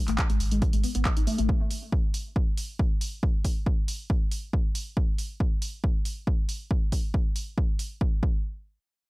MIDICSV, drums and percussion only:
0, 0, Header, 1, 2, 480
1, 0, Start_track
1, 0, Tempo, 434783
1, 1643, Time_signature, 4, 2, 24, 8
1, 10039, End_track
2, 0, Start_track
2, 0, Title_t, "Drums"
2, 88, Note_on_c, 9, 39, 33
2, 88, Note_on_c, 9, 42, 64
2, 198, Note_off_c, 9, 39, 0
2, 198, Note_off_c, 9, 42, 0
2, 203, Note_on_c, 9, 39, 114
2, 203, Note_on_c, 9, 42, 65
2, 204, Note_on_c, 9, 36, 122
2, 314, Note_off_c, 9, 39, 0
2, 314, Note_off_c, 9, 42, 0
2, 315, Note_off_c, 9, 36, 0
2, 328, Note_on_c, 9, 42, 61
2, 438, Note_off_c, 9, 42, 0
2, 443, Note_on_c, 9, 46, 93
2, 554, Note_off_c, 9, 46, 0
2, 568, Note_on_c, 9, 42, 64
2, 678, Note_off_c, 9, 42, 0
2, 683, Note_on_c, 9, 42, 64
2, 684, Note_on_c, 9, 36, 123
2, 793, Note_off_c, 9, 42, 0
2, 794, Note_off_c, 9, 36, 0
2, 808, Note_on_c, 9, 42, 63
2, 918, Note_off_c, 9, 42, 0
2, 922, Note_on_c, 9, 46, 107
2, 1033, Note_off_c, 9, 46, 0
2, 1048, Note_on_c, 9, 42, 65
2, 1158, Note_off_c, 9, 42, 0
2, 1163, Note_on_c, 9, 39, 113
2, 1163, Note_on_c, 9, 42, 63
2, 1164, Note_on_c, 9, 36, 122
2, 1273, Note_off_c, 9, 39, 0
2, 1273, Note_off_c, 9, 42, 0
2, 1274, Note_off_c, 9, 36, 0
2, 1288, Note_on_c, 9, 42, 64
2, 1399, Note_off_c, 9, 42, 0
2, 1403, Note_on_c, 9, 46, 94
2, 1513, Note_off_c, 9, 46, 0
2, 1528, Note_on_c, 9, 42, 62
2, 1639, Note_off_c, 9, 42, 0
2, 1644, Note_on_c, 9, 36, 123
2, 1755, Note_off_c, 9, 36, 0
2, 1883, Note_on_c, 9, 46, 104
2, 1993, Note_off_c, 9, 46, 0
2, 2125, Note_on_c, 9, 36, 114
2, 2235, Note_off_c, 9, 36, 0
2, 2363, Note_on_c, 9, 46, 91
2, 2473, Note_off_c, 9, 46, 0
2, 2605, Note_on_c, 9, 36, 117
2, 2715, Note_off_c, 9, 36, 0
2, 2843, Note_on_c, 9, 46, 104
2, 2953, Note_off_c, 9, 46, 0
2, 3085, Note_on_c, 9, 36, 119
2, 3195, Note_off_c, 9, 36, 0
2, 3324, Note_on_c, 9, 46, 90
2, 3435, Note_off_c, 9, 46, 0
2, 3565, Note_on_c, 9, 36, 118
2, 3675, Note_off_c, 9, 36, 0
2, 3803, Note_on_c, 9, 46, 97
2, 3805, Note_on_c, 9, 36, 59
2, 3914, Note_off_c, 9, 46, 0
2, 3915, Note_off_c, 9, 36, 0
2, 4045, Note_on_c, 9, 36, 112
2, 4156, Note_off_c, 9, 36, 0
2, 4285, Note_on_c, 9, 46, 89
2, 4395, Note_off_c, 9, 46, 0
2, 4525, Note_on_c, 9, 36, 116
2, 4636, Note_off_c, 9, 36, 0
2, 4764, Note_on_c, 9, 46, 101
2, 4874, Note_off_c, 9, 46, 0
2, 5005, Note_on_c, 9, 36, 113
2, 5115, Note_off_c, 9, 36, 0
2, 5244, Note_on_c, 9, 46, 89
2, 5355, Note_off_c, 9, 46, 0
2, 5485, Note_on_c, 9, 36, 113
2, 5595, Note_off_c, 9, 36, 0
2, 5724, Note_on_c, 9, 46, 96
2, 5834, Note_off_c, 9, 46, 0
2, 5964, Note_on_c, 9, 36, 110
2, 6075, Note_off_c, 9, 36, 0
2, 6203, Note_on_c, 9, 46, 89
2, 6314, Note_off_c, 9, 46, 0
2, 6444, Note_on_c, 9, 36, 110
2, 6555, Note_off_c, 9, 36, 0
2, 6683, Note_on_c, 9, 46, 99
2, 6793, Note_off_c, 9, 46, 0
2, 6924, Note_on_c, 9, 36, 110
2, 7034, Note_off_c, 9, 36, 0
2, 7162, Note_on_c, 9, 46, 84
2, 7272, Note_off_c, 9, 46, 0
2, 7404, Note_on_c, 9, 36, 114
2, 7515, Note_off_c, 9, 36, 0
2, 7642, Note_on_c, 9, 46, 97
2, 7644, Note_on_c, 9, 36, 58
2, 7753, Note_off_c, 9, 46, 0
2, 7754, Note_off_c, 9, 36, 0
2, 7884, Note_on_c, 9, 36, 110
2, 7994, Note_off_c, 9, 36, 0
2, 8122, Note_on_c, 9, 46, 86
2, 8232, Note_off_c, 9, 46, 0
2, 8364, Note_on_c, 9, 36, 114
2, 8474, Note_off_c, 9, 36, 0
2, 8603, Note_on_c, 9, 46, 102
2, 8713, Note_off_c, 9, 46, 0
2, 8844, Note_on_c, 9, 36, 111
2, 8954, Note_off_c, 9, 36, 0
2, 9084, Note_on_c, 9, 36, 109
2, 9194, Note_off_c, 9, 36, 0
2, 10039, End_track
0, 0, End_of_file